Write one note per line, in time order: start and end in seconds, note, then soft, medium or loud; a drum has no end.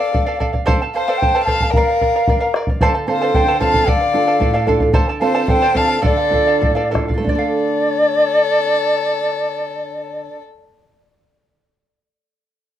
0.00 0.12 A4 medium
0.00 0.13 D5 medium
0.00 0.38 D5 medium
0.00 0.13 F5 medium
0.00 0.38 F5 loud
0.13 0.27 A4 medium
0.13 0.25 D5 medium
0.13 0.25 F5 medium
0.13 bombo low medium
0.26 0.39 A4 medium
0.26 0.39 D5 medium
0.26 0.40 F5 medium
0.40 0.54 A4 medium
0.40 0.53 D5 medium
0.40 0.52 F5 medium
0.40 bombo low medium
0.53 0.64 D5 soft
0.53 0.65 F5 medium
0.53 bombo low medium
0.66 0.80 A4 loud
0.66 0.80 C5 medium
0.66 0.80 D5 loud
0.66 0.80 F5 loud
0.66 0.81 A5 loud
0.66 bombo low medium
0.82 0.94 A4 medium
0.82 0.94 F5 medium
0.82 0.95 A5 medium
0.93 1.08 A4 medium
0.93 1.20 C5 medium
0.93 1.07 C5 medium
0.93 1.19 F5 loud
0.93 1.07 F5 medium
0.93 1.07 A5 medium
1.08 1.22 A4 medium
1.08 1.21 C5 medium
1.08 1.21 D5 medium
1.08 1.21 F5 medium
1.08 1.21 A5 medium
1.17 1.43 C5 medium
1.17 1.43 G5 loud
1.22 1.34 A4 medium
1.22 1.34 C5 medium
1.22 1.34 F5 medium
1.22 1.34 A5 medium
1.22 bombo low medium
1.35 1.47 A4 medium
1.35 1.46 C5 medium
1.35 1.47 D5 medium
1.35 1.47 F5 medium
1.35 1.48 A5 medium
1.44 1.61 A4 medium
1.44 1.61 C5 medium
1.44 1.72 F5 medium
1.44 1.73 A5 loud
1.44 bombo low medium
1.49 1.61 F5 medium
1.49 1.61 A5 medium
1.60 1.76 A4 soft
1.60 1.75 F5 soft
1.60 1.75 A5 soft
1.60 bombo low medium
1.71 2.52 A#4 medium
1.71 2.53 F5 loud
1.71 bombo low medium
1.76 1.89 A#4 medium
1.76 1.89 D5 medium
1.76 1.87 F5 medium
1.88 2.01 D5 soft
1.88 2.01 F5 medium
2.01 2.14 A#4 medium
2.01 2.15 D5 medium
2.01 2.15 F5 medium
2.01 bombo low medium
2.16 2.27 A#4 medium
2.16 2.28 D5 medium
2.16 2.28 F5 medium
2.28 2.40 A#4 medium
2.28 2.40 D5 medium
2.28 2.39 F5 medium
2.28 bombo low medium
2.40 2.54 A#4 medium
2.40 2.54 D5 medium
2.40 2.54 F5 medium
2.54 2.68 A#4 medium
2.54 2.68 D5 medium
2.54 2.68 F5 medium
2.54 bombo rim medium
2.67 2.80 D5 soft
2.67 2.81 F5 medium
2.67 bombo low medium
2.81 3.33 D3 medium
2.81 2.94 A4 medium
2.81 2.95 C5 medium
2.81 2.94 D5 medium
2.81 2.93 F5 loud
2.81 2.93 A5 loud
2.81 bombo low medium
2.94 3.07 A4 soft
2.94 3.07 F5 medium
2.94 3.08 A5 medium
3.07 3.50 C4 medium
3.07 3.50 F4 soft
3.07 3.50 A4 medium
3.07 3.21 A4 medium
3.07 3.21 C5 medium
3.07 3.21 F5 medium
3.07 3.36 F5 medium
3.07 3.20 A5 medium
3.12 3.37 C5 medium
3.22 3.34 A4 medium
3.22 3.34 C5 medium
3.22 3.35 D5 medium
3.22 3.35 F5 medium
3.22 3.35 A5 medium
3.34 3.86 D3 medium
3.34 3.47 A4 medium
3.34 3.47 C5 soft
3.34 3.62 C5 medium
3.34 3.47 F5 medium
3.34 3.59 G5 loud
3.34 3.47 A5 medium
3.34 bombo low medium
3.48 3.60 A4 medium
3.48 3.59 C5 soft
3.48 3.60 D5 medium
3.48 3.60 F5 medium
3.48 3.61 A5 medium
3.60 3.82 C4 soft
3.60 3.82 F4 soft
3.60 3.82 A4 medium
3.60 3.74 A4 medium
3.60 3.74 C5 medium
3.60 3.74 F5 medium
3.60 3.91 F5 medium
3.60 3.90 A5 loud
3.60 3.73 A5 medium
3.60 bombo low soft
3.74 3.85 A4 soft
3.74 3.86 F5 soft
3.74 3.87 A5 soft
3.74 bombo low medium
3.86 4.39 D3 medium
3.86 4.00 A4 medium
3.86 4.00 D5 medium
3.86 4.68 D5 medium
3.86 3.99 F5 medium
3.86 4.68 F5 loud
3.86 bombo low medium
4.00 4.12 D5 soft
4.00 4.13 F5 medium
4.13 4.57 D4 medium
4.13 4.57 F4 soft
4.13 4.27 A4 medium
4.13 4.57 A4 medium
4.13 4.26 D5 medium
4.13 4.26 F5 medium
4.27 4.39 A4 medium
4.27 4.40 D5 medium
4.27 4.41 F5 medium
4.40 4.92 A2 medium
4.40 4.54 A4 medium
4.40 4.53 D5 medium
4.40 4.52 F5 medium
4.40 bombo low medium
4.54 4.67 A4 medium
4.54 4.67 D5 medium
4.54 4.67 F5 medium
4.67 4.88 D4 medium
4.67 4.88 F4 medium
4.67 4.89 A4 medium
4.67 4.81 A4 medium
4.67 4.81 D5 medium
4.67 4.79 F5 medium
4.67 bombo low medium
4.80 4.92 D5 soft
4.80 4.93 F5 medium
4.80 bombo low medium
4.93 5.46 D3 medium
4.93 5.07 A4 medium
4.93 5.07 C5 medium
4.93 5.07 D5 loud
4.93 5.07 F5 medium
4.93 5.08 A5 medium
4.93 bombo low medium
5.09 5.20 A4 soft
5.09 5.21 D5 medium
5.09 5.21 A5 medium
5.19 5.65 C4 medium
5.19 5.65 F4 soft
5.19 5.65 A4 medium
5.19 5.33 A4 medium
5.19 5.47 C5 medium
5.19 5.34 D5 medium
5.19 5.45 F5 medium
5.19 5.34 F5 medium
5.19 5.33 A5 medium
5.34 5.48 A4 medium
5.34 5.49 C5 medium
5.34 5.48 D5 medium
5.34 5.47 F5 medium
5.34 5.48 A5 medium
5.48 6.01 D3 medium
5.48 5.61 A4 medium
5.48 5.78 C5 medium
5.48 5.61 D5 medium
5.48 5.61 F5 medium
5.48 5.78 G5 loud
5.48 5.61 A5 medium
5.48 bombo low medium
5.62 5.74 A4 medium
5.62 5.76 C5 medium
5.62 5.75 D5 medium
5.62 5.74 F5 medium
5.62 5.76 A5 medium
5.74 5.97 C4 medium
5.74 5.98 F4 medium
5.74 5.98 A4 medium
5.74 5.88 A4 medium
5.74 5.87 D5 medium
5.74 5.89 F5 medium
5.74 6.04 F5 medium
5.74 6.04 A5 loud
5.74 5.87 A5 medium
5.74 bombo low soft
5.88 6.01 A4 soft
5.88 6.01 D5 soft
5.88 6.03 A5 soft
6.02 6.60 D3 medium
6.02 6.17 A4 medium
6.02 6.90 A4 medium
6.02 6.17 D5 medium
6.02 6.90 D5 loud
6.02 6.16 F5 medium
6.02 bombo low medium
6.17 6.31 D5 soft
6.17 6.32 F5 medium
6.30 6.80 D4 medium
6.30 6.81 F4 soft
6.30 6.81 A4 medium
6.30 6.47 A4 medium
6.30 6.46 D5 medium
6.30 6.46 F5 medium
6.30 bombo low soft
6.47 6.59 A4 medium
6.47 6.60 D5 medium
6.47 6.61 F5 medium
6.60 7.24 A2 medium
6.60 6.75 A4 medium
6.60 6.75 D5 medium
6.60 6.74 F5 medium
6.60 bombo low medium
6.75 6.90 A4 medium
6.75 6.90 D5 medium
6.75 6.91 F5 medium
6.91 7.19 D4 medium
6.91 7.20 F4 soft
6.91 7.09 A4 medium
6.91 7.20 A4 medium
6.91 7.08 D5 medium
6.91 7.07 F5 medium
6.95 bombo rim soft
6.95 bombo low medium
7.08 7.26 D5 soft
7.08 7.26 F5 soft
7.08 bombo low medium
7.14 10.28 D3 medium
7.14 10.68 A4 medium
7.19 10.33 A3 soft
7.24 10.39 D4 soft
7.24 10.41 A4 medium
7.24 10.41 D5 loud
7.24 bombo low medium
7.29 7.35 F4 medium
7.29 10.79 D5 medium
7.35 10.49 A4 medium
7.35 10.89 F5 medium